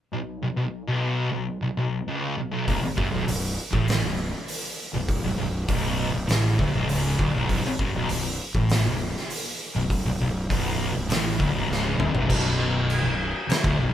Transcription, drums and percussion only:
2.68 kick, open hi-hat
2.98 kick
3.28 open hi-hat
3.73 kick
3.88 snare, open hi-hat
4.48 open hi-hat
5.09 kick, open hi-hat
5.68 kick, open hi-hat
6.29 snare, open hi-hat
6.59 kick
6.89 open hi-hat
7.19 kick
7.49 kick, open hi-hat
7.79 kick
8.09 open hi-hat
8.55 kick
8.69 snare, open hi-hat
9.17 snare
9.30 open hi-hat
9.90 kick, open hi-hat
10.50 kick, open hi-hat
11.10 snare, open hi-hat
11.40 kick
11.72 snare
12.00 mid tom
12.15 floor tom
12.30 kick, crash
12.90 crash
13.50 snare, crash
13.64 kick

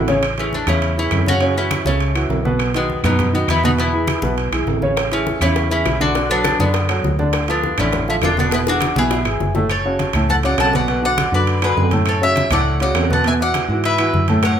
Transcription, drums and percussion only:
0.08 low bongo, high conga, high timbale
0.23 high conga, high timbale, claves
0.38 high conga, high timbale
0.53 high conga
0.67 high conga, low conga, high timbale, claves
0.82 high conga, high timbale
0.97 high conga
1.11 high conga, high timbale, low timbale, claves
1.26 high conga
1.41 high conga, high timbale
1.71 high conga, high timbale, claves
1.86 high conga
2.00 high conga, high timbale
2.15 high conga, high timbale, claves
2.30 high conga, low timbale
2.45 high conga
2.59 high conga, high timbale, claves
2.74 high conga, high timbale
2.90 high conga
3.04 high conga, low conga, high timbale, claves
3.19 high conga, low conga, high timbale
3.34 high conga
3.48 high conga, high timbale, claves
3.64 high conga
3.78 high conga, high timbale
3.93 high conga
4.07 high conga, high timbale, claves
4.22 high conga
4.37 high conga, high timbale
4.52 high conga, high timbale, claves
4.67 high conga, low timbale
4.82 high conga
4.97 high bongo, high conga, high timbale, claves
5.12 high bongo, high conga, high timbale
5.27 high bongo, high conga
5.41 high conga, low conga, high timbale, claves
5.56 high bongo, high timbale
5.71 high bongo, high conga
5.86 high bongo, low bongo, high conga, high timbale, claves
6.00 high bongo, high conga
6.15 high bongo, high conga, high timbale
6.30 high bongo, high conga
6.44 high bongo, high conga, high timbale, claves
6.60 high conga
6.74 high bongo, high conga, high timbale
6.89 high bongo, high conga, high timbale, claves
7.04 high bongo, low bongo, high conga
7.19 high bongo, high conga
7.33 high bongo, high conga, high timbale, claves
7.48 high bongo, high conga, high timbale
7.63 high bongo, high conga
7.78 high conga, low conga, high timbale, claves
7.93 high bongo, high conga, low conga, high timbale
8.08 high bongo, high conga
8.22 high bongo, low bongo, high conga, high timbale, low timbale, claves
8.37 high bongo, high conga
8.51 high bongo, high timbale
8.67 high bongo, high conga
8.81 high conga, high timbale, claves
8.96 high conga
9.11 low bongo, high conga, high timbale
9.25 high conga, high timbale, claves
9.40 low bongo, high conga
9.55 low bongo, high conga
9.70 high conga, high timbale, claves
9.85 high conga
9.99 high conga, high timbale
10.13 high conga, low conga, high timbale, claves
10.29 high conga, low conga
10.43 high conga, high timbale
10.58 high timbale, low timbale, claves
10.73 high conga
10.88 high conga, high timbale
11.03 high conga
11.18 high conga, high timbale, claves
11.33 high conga
11.47 high conga, high timbale
11.62 high conga, high timbale, claves
11.77 high conga, low timbale
11.91 high conga, high timbale
12.06 high timbale, claves
12.36 high conga, high timbale
12.51 high conga, low conga, high timbale, claves
12.67 high conga
12.80 high timbale
12.95 high conga, high timbale, low timbale, claves
13.10 high conga
13.24 high timbale
13.54 high conga, high timbale, claves
13.70 high conga
13.84 high conga, high timbale
13.98 high conga, high timbale, claves
14.14 high conga
14.28 high conga, high timbale
14.43 high bongo, high conga, high timbale, claves

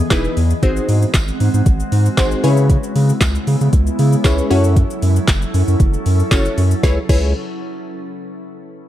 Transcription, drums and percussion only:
0.10 kick, snare, clap, closed hi-hat, tambourine, shaker
0.25 shaker
0.37 open hi-hat, shaker
0.50 shaker
0.63 kick, closed hi-hat, shaker
0.77 shaker
0.89 open hi-hat, shaker
1.02 shaker
1.14 kick, snare, clap, closed hi-hat, tambourine, shaker
1.28 shaker
1.40 open hi-hat, shaker
1.54 shaker
1.66 kick, closed hi-hat, shaker
1.80 shaker
1.92 open hi-hat, shaker
2.06 shaker
2.17 kick, snare, clap, closed hi-hat, tambourine, shaker
2.31 shaker
2.44 open hi-hat, shaker
2.57 shaker
2.70 kick, closed hi-hat, shaker
2.83 shaker
2.96 open hi-hat, shaker
3.09 shaker
3.21 kick, snare, clap, closed hi-hat, tambourine, shaker
3.35 shaker
3.47 open hi-hat, shaker
3.61 shaker
3.73 kick, closed hi-hat, shaker
3.87 shaker
3.99 open hi-hat, shaker
4.13 shaker
4.24 kick, snare, clap, closed hi-hat, tambourine, shaker
4.38 shaker
4.51 open hi-hat, shaker
4.64 shaker
4.76 kick, closed hi-hat, shaker
4.90 shaker
5.02 open hi-hat, shaker
5.16 shaker
5.28 kick, snare, clap, closed hi-hat, tambourine, shaker
5.42 shaker
5.54 open hi-hat, shaker
5.68 shaker
5.80 kick, closed hi-hat, shaker
5.94 shaker
6.06 open hi-hat, shaker
6.20 shaker
6.31 kick, snare, clap, closed hi-hat, tambourine, shaker
6.45 shaker
6.58 open hi-hat, shaker
6.71 shaker
6.83 kick, snare, tambourine
7.09 kick, crash, tambourine

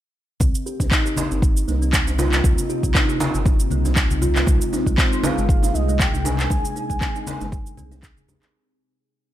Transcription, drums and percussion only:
0.40 kick, high conga, low conga, shaker
0.55 shaker
0.67 shaker
0.80 kick, djembe tone, shaker
0.91 kick, clap, shaker
1.06 shaker
1.16 djembe slap, high conga, djembe tone, shaker
1.31 shaker
1.42 kick, shaker
1.57 shaker
1.68 djembe tone, shaker
1.82 shaker
1.93 kick, clap, shaker
2.07 djembe tone, shaker
2.18 djembe slap, high conga, shaker
2.32 clap, djembe slap, shaker
2.44 kick, high conga, low conga, shaker
2.58 djembe tone, shaker
2.70 shaker
2.83 kick, shaker
2.95 kick, clap, djembe tone, shaker
3.09 shaker
3.20 djembe slap, high conga, shaker
3.34 shaker
3.45 kick, djembe tone, low conga, shaker
3.60 shaker
3.70 high conga, shaker
3.85 djembe tone, shaker
3.96 kick, clap, shaker
4.11 high conga, shaker
4.22 high conga, low conga, shaker
4.36 clap, djembe slap, djembe tone, shaker
4.47 kick, high conga, low conga, shaker
4.61 shaker
4.73 djembe tone, shaker
4.86 kick, shaker
4.98 kick, clap, shaker
5.13 shaker
5.23 djembe slap, high conga, djembe tone, shaker
5.38 shaker
5.49 kick, shaker
5.63 djembe tone, shaker
5.75 shaker
5.89 shaker
6.00 kick, clap, shaker
6.14 djembe tone, shaker
6.25 djembe slap, high conga, shaker
6.39 clap, djembe slap, shaker
6.50 kick, high conga, djembe tone, low conga, shaker
6.65 shaker
6.76 shaker
6.90 kick, shaker
7.01 kick, clap, djembe tone, shaker
7.16 shaker
7.27 djembe slap, high conga, shaker
7.41 djembe tone, shaker
7.52 kick, low conga, shaker
7.66 shaker
7.77 high conga, low conga, shaker
7.91 djembe tone, shaker
8.03 kick, clap, shaker
8.17 high conga, shaker
8.28 high conga, djembe tone, low conga, shaker
8.42 clap, djembe slap, shaker

